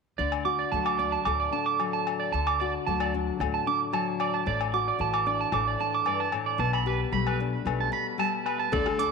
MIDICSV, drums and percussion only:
0, 0, Header, 1, 2, 480
1, 0, Start_track
1, 0, Key_signature, 2, "major"
1, 0, Tempo, 533333
1, 174, Time_signature, 4, 2, 24, 8
1, 8204, End_track
2, 0, Start_track
2, 0, Title_t, "Drums"
2, 288, Note_on_c, 9, 68, 51
2, 378, Note_off_c, 9, 68, 0
2, 771, Note_on_c, 9, 68, 56
2, 861, Note_off_c, 9, 68, 0
2, 1129, Note_on_c, 9, 68, 57
2, 1219, Note_off_c, 9, 68, 0
2, 1617, Note_on_c, 9, 68, 51
2, 1707, Note_off_c, 9, 68, 0
2, 1862, Note_on_c, 9, 68, 53
2, 1952, Note_off_c, 9, 68, 0
2, 2221, Note_on_c, 9, 68, 55
2, 2311, Note_off_c, 9, 68, 0
2, 2703, Note_on_c, 9, 68, 59
2, 2793, Note_off_c, 9, 68, 0
2, 3070, Note_on_c, 9, 68, 55
2, 3160, Note_off_c, 9, 68, 0
2, 3541, Note_on_c, 9, 68, 56
2, 3631, Note_off_c, 9, 68, 0
2, 3779, Note_on_c, 9, 68, 53
2, 3869, Note_off_c, 9, 68, 0
2, 4145, Note_on_c, 9, 68, 59
2, 4235, Note_off_c, 9, 68, 0
2, 4622, Note_on_c, 9, 68, 58
2, 4712, Note_off_c, 9, 68, 0
2, 4970, Note_on_c, 9, 68, 57
2, 5060, Note_off_c, 9, 68, 0
2, 5453, Note_on_c, 9, 68, 56
2, 5543, Note_off_c, 9, 68, 0
2, 5691, Note_on_c, 9, 68, 55
2, 5781, Note_off_c, 9, 68, 0
2, 6060, Note_on_c, 9, 68, 57
2, 6150, Note_off_c, 9, 68, 0
2, 6539, Note_on_c, 9, 68, 58
2, 6629, Note_off_c, 9, 68, 0
2, 6902, Note_on_c, 9, 68, 59
2, 6992, Note_off_c, 9, 68, 0
2, 7375, Note_on_c, 9, 68, 56
2, 7465, Note_off_c, 9, 68, 0
2, 7616, Note_on_c, 9, 68, 51
2, 7706, Note_off_c, 9, 68, 0
2, 7856, Note_on_c, 9, 36, 87
2, 7859, Note_on_c, 9, 62, 33
2, 7946, Note_off_c, 9, 36, 0
2, 7949, Note_off_c, 9, 62, 0
2, 7973, Note_on_c, 9, 68, 56
2, 7978, Note_on_c, 9, 37, 63
2, 8063, Note_off_c, 9, 68, 0
2, 8068, Note_off_c, 9, 37, 0
2, 8095, Note_on_c, 9, 42, 43
2, 8185, Note_off_c, 9, 42, 0
2, 8204, End_track
0, 0, End_of_file